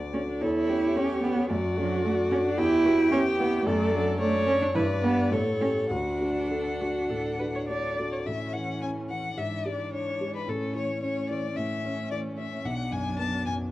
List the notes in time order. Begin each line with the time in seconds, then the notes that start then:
Already playing: D2 A3 D4 F#4 D5
0.13 A3 C#4 D4 F#4
0.29 D4
0.41 E2 E4 A4 C#5
0.69 A3 C#4 G4
0.96 A3 C#4 G4
1.23 A3 B3 C#4 G4
1.50 F#2 A3 F#4 D5
1.77 F#3 A3 D4 F#4
2.04 A3 D4 F#4
2.31 A3 C#4 D4 F#4
2.45 D4
2.57 E2 E4 G4 G5
2.85 B3 E4 F#4 G4
3.11 B3 C#4 E4 G4
3.38 B3 E4 G4
3.65 F#2 A3 A4 D5
3.93 F#3 A3 D4 A4
4.20 A3 D4 A4 C#5 D5
4.47 A3 C#4 D4 A4
4.62 D4
4.74 G2 E4 B4 D5
5.02 B3 D4 G4
5.31 A2 A3 A4 C#5
5.61 A3 C#4 G4
5.90 D2 D4 F#4 F#5
6.20 A3 D4 F#4
6.50 A3 D4 F#4 A4
6.80 A3 D4 F#4
7.10 A2 A4
7.39 A3 D4 F#4 B4
7.55 C#5
7.68 A3 D4 F#4 C#5 D5
7.97 A3 D4 F#4 D5
8.13 C#5
8.26 A2 E3 C#4 E5
8.53 E3 F#5
8.82 C#4 G#5
9.10 E3 F#5
9.37 G#2 E3 D4 E5
9.66 G#3 D5
9.93 D4 C#5
10.21 G#3
10.36 B4
10.48 A2 A3 C#4 A4
10.75 E3 C#5
11.02 A3 C#4 C#5
11.29 E3 D5
11.56 A2 A3 C#4 E5
11.84 C#4
12.11 E3 D5
12.38 C#4 E5
12.64 B1 F#3 D4 F#5
12.91 F#2 G#5
13.19 B3 A5
13.45 F#2 G#5